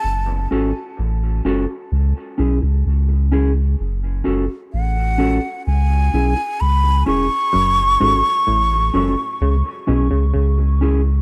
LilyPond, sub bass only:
\new Staff \with { instrumentName = "Sub bass" } { \clef bass \time 4/4 \key fis \minor \tempo 4 = 64 fis,,8 gis,,16 r16 a,,8 fis,,16 r16 cis,16 r16 b,,16 cis,16 cis,4 | fis,,8 fis,,16 r16 a,,8. r16 cis,8 b,,16 r16 cis,8 e,,16 r16 | fis,,8 gis,,16 r16 a,,8 fis,,16 r16 cis,16 r16 b,,16 cis,16 cis,4 | }